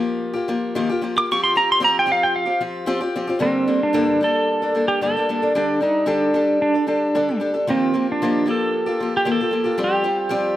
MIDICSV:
0, 0, Header, 1, 3, 480
1, 0, Start_track
1, 0, Key_signature, -2, "minor"
1, 0, Tempo, 532860
1, 1160, Time_signature, 4, 2, 24, 8
1, 9517, End_track
2, 0, Start_track
2, 0, Title_t, "Pedal steel guitar"
2, 0, Program_c, 0, 26
2, 1061, Note_on_c, 0, 86, 93
2, 1167, Note_off_c, 0, 86, 0
2, 1188, Note_on_c, 0, 85, 99
2, 1289, Note_off_c, 0, 85, 0
2, 1293, Note_on_c, 0, 84, 104
2, 1403, Note_off_c, 0, 84, 0
2, 1415, Note_on_c, 0, 82, 97
2, 1524, Note_off_c, 0, 82, 0
2, 1548, Note_on_c, 0, 84, 104
2, 1651, Note_off_c, 0, 84, 0
2, 1661, Note_on_c, 0, 82, 102
2, 1767, Note_off_c, 0, 82, 0
2, 1793, Note_on_c, 0, 79, 91
2, 1893, Note_off_c, 0, 79, 0
2, 1907, Note_on_c, 0, 77, 99
2, 2010, Note_off_c, 0, 77, 0
2, 2012, Note_on_c, 0, 79, 91
2, 2122, Note_off_c, 0, 79, 0
2, 2123, Note_on_c, 0, 77, 113
2, 2354, Note_off_c, 0, 77, 0
2, 3084, Note_on_c, 0, 60, 93
2, 3449, Note_off_c, 0, 60, 0
2, 3452, Note_on_c, 0, 62, 97
2, 3781, Note_off_c, 0, 62, 0
2, 3820, Note_on_c, 0, 69, 99
2, 4374, Note_off_c, 0, 69, 0
2, 4397, Note_on_c, 0, 67, 76
2, 4522, Note_off_c, 0, 67, 0
2, 4531, Note_on_c, 0, 69, 89
2, 4972, Note_off_c, 0, 69, 0
2, 5023, Note_on_c, 0, 62, 93
2, 5247, Note_off_c, 0, 62, 0
2, 5250, Note_on_c, 0, 63, 83
2, 5468, Note_off_c, 0, 63, 0
2, 5483, Note_on_c, 0, 62, 80
2, 5951, Note_off_c, 0, 62, 0
2, 5962, Note_on_c, 0, 62, 89
2, 6191, Note_off_c, 0, 62, 0
2, 6202, Note_on_c, 0, 62, 79
2, 6648, Note_off_c, 0, 62, 0
2, 6939, Note_on_c, 0, 60, 99
2, 7265, Note_off_c, 0, 60, 0
2, 7313, Note_on_c, 0, 62, 99
2, 7662, Note_on_c, 0, 69, 97
2, 7667, Note_off_c, 0, 62, 0
2, 8255, Note_off_c, 0, 69, 0
2, 8259, Note_on_c, 0, 67, 80
2, 8373, Note_off_c, 0, 67, 0
2, 8392, Note_on_c, 0, 69, 104
2, 8824, Note_off_c, 0, 69, 0
2, 8864, Note_on_c, 0, 67, 89
2, 9517, Note_off_c, 0, 67, 0
2, 9517, End_track
3, 0, Start_track
3, 0, Title_t, "Steel-string acoustic guitar"
3, 0, Program_c, 1, 25
3, 0, Note_on_c, 1, 53, 69
3, 0, Note_on_c, 1, 58, 76
3, 0, Note_on_c, 1, 65, 83
3, 0, Note_on_c, 1, 67, 87
3, 290, Note_off_c, 1, 67, 0
3, 298, Note_off_c, 1, 65, 0
3, 301, Note_on_c, 1, 67, 69
3, 309, Note_off_c, 1, 58, 0
3, 309, Note_on_c, 1, 65, 51
3, 310, Note_off_c, 1, 53, 0
3, 324, Note_on_c, 1, 58, 52
3, 427, Note_off_c, 1, 58, 0
3, 430, Note_off_c, 1, 65, 0
3, 431, Note_off_c, 1, 67, 0
3, 432, Note_on_c, 1, 53, 74
3, 438, Note_on_c, 1, 58, 71
3, 440, Note_on_c, 1, 65, 74
3, 443, Note_on_c, 1, 67, 71
3, 672, Note_off_c, 1, 58, 0
3, 675, Note_off_c, 1, 65, 0
3, 676, Note_off_c, 1, 53, 0
3, 676, Note_off_c, 1, 67, 0
3, 677, Note_on_c, 1, 51, 91
3, 683, Note_on_c, 1, 58, 92
3, 686, Note_on_c, 1, 65, 97
3, 686, Note_on_c, 1, 67, 94
3, 687, Note_on_c, 1, 53, 86
3, 795, Note_off_c, 1, 67, 0
3, 798, Note_off_c, 1, 51, 0
3, 802, Note_off_c, 1, 58, 0
3, 803, Note_off_c, 1, 53, 0
3, 803, Note_off_c, 1, 65, 0
3, 806, Note_on_c, 1, 67, 65
3, 819, Note_on_c, 1, 65, 57
3, 824, Note_on_c, 1, 58, 51
3, 909, Note_off_c, 1, 58, 0
3, 914, Note_on_c, 1, 53, 60
3, 919, Note_off_c, 1, 65, 0
3, 920, Note_on_c, 1, 58, 64
3, 923, Note_off_c, 1, 67, 0
3, 930, Note_on_c, 1, 65, 64
3, 933, Note_on_c, 1, 67, 73
3, 1033, Note_off_c, 1, 67, 0
3, 1036, Note_off_c, 1, 65, 0
3, 1037, Note_off_c, 1, 53, 0
3, 1040, Note_off_c, 1, 58, 0
3, 1044, Note_on_c, 1, 67, 55
3, 1047, Note_on_c, 1, 65, 53
3, 1053, Note_on_c, 1, 58, 52
3, 1162, Note_off_c, 1, 67, 0
3, 1163, Note_off_c, 1, 65, 0
3, 1167, Note_off_c, 1, 58, 0
3, 1182, Note_on_c, 1, 53, 81
3, 1184, Note_on_c, 1, 60, 83
3, 1187, Note_on_c, 1, 67, 99
3, 1192, Note_on_c, 1, 65, 91
3, 1389, Note_off_c, 1, 53, 0
3, 1395, Note_off_c, 1, 60, 0
3, 1399, Note_on_c, 1, 53, 64
3, 1401, Note_off_c, 1, 65, 0
3, 1404, Note_off_c, 1, 67, 0
3, 1406, Note_on_c, 1, 60, 66
3, 1411, Note_on_c, 1, 65, 66
3, 1415, Note_on_c, 1, 67, 72
3, 1612, Note_off_c, 1, 60, 0
3, 1613, Note_off_c, 1, 53, 0
3, 1620, Note_off_c, 1, 65, 0
3, 1622, Note_on_c, 1, 60, 87
3, 1624, Note_on_c, 1, 53, 82
3, 1631, Note_off_c, 1, 67, 0
3, 1631, Note_on_c, 1, 65, 86
3, 1642, Note_on_c, 1, 67, 103
3, 1844, Note_off_c, 1, 53, 0
3, 1851, Note_off_c, 1, 60, 0
3, 1851, Note_off_c, 1, 65, 0
3, 1855, Note_on_c, 1, 53, 68
3, 1861, Note_on_c, 1, 65, 71
3, 1862, Note_on_c, 1, 60, 70
3, 1864, Note_off_c, 1, 67, 0
3, 1875, Note_on_c, 1, 67, 79
3, 2200, Note_off_c, 1, 67, 0
3, 2205, Note_off_c, 1, 65, 0
3, 2211, Note_off_c, 1, 60, 0
3, 2211, Note_on_c, 1, 67, 52
3, 2216, Note_on_c, 1, 65, 45
3, 2222, Note_on_c, 1, 60, 44
3, 2227, Note_off_c, 1, 53, 0
3, 2336, Note_off_c, 1, 60, 0
3, 2341, Note_off_c, 1, 67, 0
3, 2343, Note_off_c, 1, 65, 0
3, 2346, Note_on_c, 1, 53, 60
3, 2347, Note_on_c, 1, 60, 58
3, 2352, Note_on_c, 1, 67, 71
3, 2354, Note_on_c, 1, 65, 67
3, 2567, Note_off_c, 1, 53, 0
3, 2575, Note_off_c, 1, 67, 0
3, 2578, Note_off_c, 1, 60, 0
3, 2578, Note_on_c, 1, 53, 84
3, 2581, Note_off_c, 1, 65, 0
3, 2586, Note_on_c, 1, 67, 106
3, 2589, Note_on_c, 1, 60, 96
3, 2592, Note_on_c, 1, 65, 96
3, 2697, Note_off_c, 1, 67, 0
3, 2707, Note_off_c, 1, 65, 0
3, 2707, Note_on_c, 1, 67, 67
3, 2708, Note_off_c, 1, 53, 0
3, 2708, Note_off_c, 1, 60, 0
3, 2718, Note_on_c, 1, 65, 56
3, 2719, Note_on_c, 1, 60, 57
3, 2832, Note_off_c, 1, 60, 0
3, 2833, Note_off_c, 1, 67, 0
3, 2839, Note_off_c, 1, 65, 0
3, 2842, Note_on_c, 1, 60, 81
3, 2844, Note_on_c, 1, 53, 72
3, 2849, Note_on_c, 1, 65, 77
3, 2854, Note_on_c, 1, 67, 70
3, 2937, Note_off_c, 1, 67, 0
3, 2948, Note_on_c, 1, 67, 66
3, 2950, Note_off_c, 1, 65, 0
3, 2961, Note_off_c, 1, 53, 0
3, 2961, Note_off_c, 1, 60, 0
3, 2961, Note_on_c, 1, 65, 63
3, 2970, Note_on_c, 1, 60, 59
3, 3054, Note_on_c, 1, 43, 82
3, 3059, Note_off_c, 1, 60, 0
3, 3060, Note_on_c, 1, 50, 82
3, 3062, Note_on_c, 1, 58, 80
3, 3064, Note_off_c, 1, 65, 0
3, 3064, Note_off_c, 1, 67, 0
3, 3067, Note_on_c, 1, 69, 81
3, 3068, Note_on_c, 1, 55, 75
3, 3068, Note_on_c, 1, 62, 79
3, 3299, Note_off_c, 1, 55, 0
3, 3303, Note_off_c, 1, 58, 0
3, 3304, Note_off_c, 1, 62, 0
3, 3306, Note_off_c, 1, 43, 0
3, 3309, Note_off_c, 1, 50, 0
3, 3309, Note_off_c, 1, 69, 0
3, 3310, Note_on_c, 1, 55, 63
3, 3314, Note_on_c, 1, 58, 56
3, 3315, Note_on_c, 1, 62, 58
3, 3320, Note_on_c, 1, 69, 62
3, 3538, Note_off_c, 1, 62, 0
3, 3539, Note_off_c, 1, 55, 0
3, 3540, Note_on_c, 1, 43, 82
3, 3542, Note_off_c, 1, 58, 0
3, 3542, Note_off_c, 1, 69, 0
3, 3549, Note_on_c, 1, 62, 94
3, 3550, Note_on_c, 1, 50, 82
3, 3550, Note_on_c, 1, 55, 82
3, 3553, Note_on_c, 1, 58, 90
3, 3553, Note_on_c, 1, 69, 86
3, 3779, Note_off_c, 1, 55, 0
3, 3789, Note_off_c, 1, 43, 0
3, 3789, Note_on_c, 1, 55, 59
3, 3792, Note_off_c, 1, 58, 0
3, 3794, Note_off_c, 1, 50, 0
3, 3794, Note_off_c, 1, 62, 0
3, 3796, Note_off_c, 1, 69, 0
3, 3803, Note_on_c, 1, 58, 65
3, 3806, Note_on_c, 1, 62, 69
3, 3813, Note_on_c, 1, 69, 74
3, 4149, Note_off_c, 1, 69, 0
3, 4154, Note_off_c, 1, 55, 0
3, 4155, Note_off_c, 1, 62, 0
3, 4160, Note_on_c, 1, 69, 53
3, 4161, Note_off_c, 1, 58, 0
3, 4166, Note_on_c, 1, 62, 54
3, 4172, Note_on_c, 1, 58, 43
3, 4177, Note_on_c, 1, 55, 41
3, 4264, Note_off_c, 1, 55, 0
3, 4267, Note_off_c, 1, 58, 0
3, 4272, Note_off_c, 1, 62, 0
3, 4274, Note_on_c, 1, 55, 58
3, 4278, Note_on_c, 1, 58, 59
3, 4280, Note_off_c, 1, 69, 0
3, 4282, Note_on_c, 1, 62, 68
3, 4291, Note_on_c, 1, 69, 60
3, 4513, Note_off_c, 1, 55, 0
3, 4515, Note_off_c, 1, 62, 0
3, 4516, Note_on_c, 1, 43, 71
3, 4517, Note_off_c, 1, 69, 0
3, 4518, Note_off_c, 1, 58, 0
3, 4518, Note_on_c, 1, 50, 71
3, 4524, Note_on_c, 1, 55, 75
3, 4526, Note_on_c, 1, 62, 79
3, 4528, Note_on_c, 1, 69, 76
3, 4531, Note_on_c, 1, 58, 72
3, 4638, Note_off_c, 1, 43, 0
3, 4638, Note_off_c, 1, 50, 0
3, 4641, Note_off_c, 1, 55, 0
3, 4643, Note_off_c, 1, 62, 0
3, 4644, Note_off_c, 1, 69, 0
3, 4645, Note_off_c, 1, 58, 0
3, 4653, Note_on_c, 1, 69, 60
3, 4654, Note_on_c, 1, 62, 46
3, 4667, Note_on_c, 1, 58, 51
3, 4671, Note_on_c, 1, 55, 43
3, 4755, Note_off_c, 1, 55, 0
3, 4762, Note_off_c, 1, 58, 0
3, 4766, Note_off_c, 1, 62, 0
3, 4766, Note_off_c, 1, 69, 0
3, 4766, Note_on_c, 1, 55, 63
3, 4772, Note_on_c, 1, 58, 65
3, 4777, Note_on_c, 1, 62, 57
3, 4778, Note_on_c, 1, 69, 67
3, 4872, Note_off_c, 1, 69, 0
3, 4878, Note_off_c, 1, 62, 0
3, 4880, Note_off_c, 1, 58, 0
3, 4882, Note_on_c, 1, 69, 57
3, 4883, Note_off_c, 1, 55, 0
3, 4889, Note_on_c, 1, 62, 55
3, 4891, Note_on_c, 1, 58, 47
3, 4892, Note_on_c, 1, 55, 43
3, 4990, Note_off_c, 1, 55, 0
3, 4990, Note_off_c, 1, 62, 0
3, 4997, Note_off_c, 1, 58, 0
3, 4999, Note_off_c, 1, 69, 0
3, 5000, Note_on_c, 1, 55, 84
3, 5001, Note_on_c, 1, 62, 86
3, 5005, Note_on_c, 1, 50, 81
3, 5009, Note_on_c, 1, 69, 94
3, 5011, Note_on_c, 1, 67, 73
3, 5219, Note_off_c, 1, 55, 0
3, 5230, Note_on_c, 1, 55, 64
3, 5231, Note_off_c, 1, 62, 0
3, 5234, Note_off_c, 1, 69, 0
3, 5242, Note_off_c, 1, 50, 0
3, 5242, Note_on_c, 1, 62, 62
3, 5243, Note_off_c, 1, 67, 0
3, 5245, Note_on_c, 1, 69, 63
3, 5253, Note_on_c, 1, 67, 63
3, 5447, Note_off_c, 1, 62, 0
3, 5451, Note_off_c, 1, 55, 0
3, 5456, Note_off_c, 1, 69, 0
3, 5457, Note_on_c, 1, 62, 85
3, 5461, Note_off_c, 1, 67, 0
3, 5461, Note_on_c, 1, 50, 77
3, 5461, Note_on_c, 1, 55, 89
3, 5467, Note_on_c, 1, 69, 97
3, 5472, Note_on_c, 1, 67, 97
3, 5698, Note_off_c, 1, 55, 0
3, 5700, Note_off_c, 1, 67, 0
3, 5703, Note_off_c, 1, 62, 0
3, 5709, Note_on_c, 1, 55, 64
3, 5710, Note_off_c, 1, 50, 0
3, 5711, Note_on_c, 1, 67, 64
3, 5714, Note_off_c, 1, 69, 0
3, 5714, Note_on_c, 1, 62, 68
3, 5726, Note_on_c, 1, 69, 69
3, 6060, Note_off_c, 1, 69, 0
3, 6071, Note_on_c, 1, 69, 50
3, 6072, Note_off_c, 1, 67, 0
3, 6073, Note_off_c, 1, 62, 0
3, 6075, Note_off_c, 1, 55, 0
3, 6083, Note_on_c, 1, 67, 49
3, 6084, Note_on_c, 1, 62, 41
3, 6181, Note_off_c, 1, 62, 0
3, 6182, Note_off_c, 1, 67, 0
3, 6185, Note_off_c, 1, 69, 0
3, 6186, Note_on_c, 1, 55, 56
3, 6192, Note_on_c, 1, 62, 61
3, 6193, Note_on_c, 1, 67, 65
3, 6196, Note_on_c, 1, 69, 69
3, 6428, Note_off_c, 1, 55, 0
3, 6433, Note_off_c, 1, 62, 0
3, 6434, Note_off_c, 1, 67, 0
3, 6438, Note_off_c, 1, 69, 0
3, 6439, Note_on_c, 1, 55, 73
3, 6441, Note_on_c, 1, 50, 72
3, 6444, Note_on_c, 1, 62, 85
3, 6444, Note_on_c, 1, 67, 75
3, 6453, Note_on_c, 1, 69, 89
3, 6553, Note_off_c, 1, 69, 0
3, 6560, Note_off_c, 1, 55, 0
3, 6561, Note_off_c, 1, 50, 0
3, 6562, Note_off_c, 1, 62, 0
3, 6562, Note_off_c, 1, 67, 0
3, 6563, Note_on_c, 1, 69, 56
3, 6573, Note_on_c, 1, 67, 51
3, 6583, Note_on_c, 1, 62, 42
3, 6662, Note_off_c, 1, 62, 0
3, 6664, Note_off_c, 1, 67, 0
3, 6664, Note_on_c, 1, 55, 63
3, 6665, Note_off_c, 1, 69, 0
3, 6672, Note_on_c, 1, 62, 66
3, 6675, Note_on_c, 1, 67, 68
3, 6675, Note_on_c, 1, 69, 67
3, 6779, Note_off_c, 1, 69, 0
3, 6782, Note_off_c, 1, 67, 0
3, 6790, Note_on_c, 1, 69, 59
3, 6792, Note_off_c, 1, 55, 0
3, 6793, Note_on_c, 1, 67, 44
3, 6796, Note_off_c, 1, 62, 0
3, 6810, Note_on_c, 1, 62, 46
3, 6910, Note_off_c, 1, 67, 0
3, 6912, Note_on_c, 1, 53, 84
3, 6913, Note_on_c, 1, 51, 80
3, 6915, Note_off_c, 1, 69, 0
3, 6916, Note_off_c, 1, 62, 0
3, 6920, Note_on_c, 1, 58, 84
3, 6920, Note_on_c, 1, 65, 87
3, 6920, Note_on_c, 1, 67, 92
3, 7137, Note_off_c, 1, 53, 0
3, 7141, Note_off_c, 1, 58, 0
3, 7148, Note_on_c, 1, 53, 62
3, 7150, Note_off_c, 1, 65, 0
3, 7150, Note_off_c, 1, 67, 0
3, 7152, Note_on_c, 1, 58, 61
3, 7157, Note_off_c, 1, 51, 0
3, 7161, Note_on_c, 1, 65, 62
3, 7161, Note_on_c, 1, 67, 67
3, 7394, Note_off_c, 1, 53, 0
3, 7396, Note_off_c, 1, 58, 0
3, 7401, Note_off_c, 1, 65, 0
3, 7401, Note_off_c, 1, 67, 0
3, 7403, Note_on_c, 1, 53, 85
3, 7404, Note_on_c, 1, 51, 82
3, 7411, Note_on_c, 1, 58, 91
3, 7411, Note_on_c, 1, 65, 88
3, 7422, Note_on_c, 1, 67, 95
3, 7607, Note_off_c, 1, 53, 0
3, 7618, Note_off_c, 1, 58, 0
3, 7618, Note_on_c, 1, 53, 66
3, 7624, Note_off_c, 1, 65, 0
3, 7628, Note_off_c, 1, 67, 0
3, 7629, Note_on_c, 1, 58, 67
3, 7635, Note_on_c, 1, 65, 65
3, 7639, Note_on_c, 1, 67, 70
3, 7642, Note_off_c, 1, 51, 0
3, 7972, Note_off_c, 1, 67, 0
3, 7981, Note_off_c, 1, 65, 0
3, 7983, Note_on_c, 1, 67, 58
3, 7989, Note_off_c, 1, 53, 0
3, 7991, Note_off_c, 1, 58, 0
3, 7992, Note_on_c, 1, 65, 51
3, 8002, Note_on_c, 1, 58, 49
3, 8101, Note_off_c, 1, 58, 0
3, 8110, Note_on_c, 1, 53, 61
3, 8112, Note_off_c, 1, 67, 0
3, 8112, Note_on_c, 1, 58, 54
3, 8116, Note_off_c, 1, 65, 0
3, 8128, Note_on_c, 1, 65, 60
3, 8129, Note_on_c, 1, 67, 67
3, 8324, Note_off_c, 1, 53, 0
3, 8333, Note_on_c, 1, 51, 69
3, 8334, Note_off_c, 1, 58, 0
3, 8335, Note_on_c, 1, 53, 88
3, 8336, Note_off_c, 1, 67, 0
3, 8337, Note_off_c, 1, 65, 0
3, 8345, Note_on_c, 1, 58, 86
3, 8347, Note_on_c, 1, 67, 77
3, 8348, Note_on_c, 1, 65, 76
3, 8460, Note_off_c, 1, 67, 0
3, 8467, Note_off_c, 1, 51, 0
3, 8468, Note_off_c, 1, 53, 0
3, 8468, Note_off_c, 1, 65, 0
3, 8471, Note_on_c, 1, 67, 58
3, 8473, Note_off_c, 1, 58, 0
3, 8479, Note_on_c, 1, 65, 47
3, 8492, Note_on_c, 1, 58, 42
3, 8563, Note_on_c, 1, 53, 57
3, 8568, Note_off_c, 1, 58, 0
3, 8572, Note_off_c, 1, 65, 0
3, 8573, Note_off_c, 1, 67, 0
3, 8579, Note_on_c, 1, 58, 61
3, 8582, Note_on_c, 1, 65, 57
3, 8584, Note_on_c, 1, 67, 68
3, 8672, Note_off_c, 1, 67, 0
3, 8683, Note_on_c, 1, 67, 59
3, 8687, Note_off_c, 1, 58, 0
3, 8687, Note_off_c, 1, 65, 0
3, 8697, Note_on_c, 1, 58, 50
3, 8697, Note_on_c, 1, 65, 55
3, 8702, Note_off_c, 1, 53, 0
3, 8800, Note_off_c, 1, 67, 0
3, 8804, Note_off_c, 1, 65, 0
3, 8804, Note_on_c, 1, 53, 75
3, 8807, Note_on_c, 1, 55, 81
3, 8808, Note_off_c, 1, 58, 0
3, 8811, Note_on_c, 1, 67, 87
3, 8812, Note_on_c, 1, 60, 86
3, 8815, Note_on_c, 1, 65, 83
3, 9031, Note_off_c, 1, 55, 0
3, 9035, Note_off_c, 1, 65, 0
3, 9036, Note_off_c, 1, 60, 0
3, 9042, Note_on_c, 1, 55, 61
3, 9045, Note_off_c, 1, 67, 0
3, 9046, Note_on_c, 1, 65, 64
3, 9047, Note_on_c, 1, 60, 65
3, 9056, Note_on_c, 1, 67, 60
3, 9062, Note_off_c, 1, 53, 0
3, 9271, Note_off_c, 1, 55, 0
3, 9271, Note_off_c, 1, 65, 0
3, 9271, Note_on_c, 1, 53, 80
3, 9272, Note_off_c, 1, 60, 0
3, 9277, Note_off_c, 1, 67, 0
3, 9282, Note_on_c, 1, 55, 91
3, 9282, Note_on_c, 1, 60, 95
3, 9282, Note_on_c, 1, 65, 86
3, 9288, Note_on_c, 1, 67, 94
3, 9511, Note_off_c, 1, 55, 0
3, 9517, Note_off_c, 1, 53, 0
3, 9517, Note_off_c, 1, 60, 0
3, 9517, Note_off_c, 1, 65, 0
3, 9517, Note_off_c, 1, 67, 0
3, 9517, End_track
0, 0, End_of_file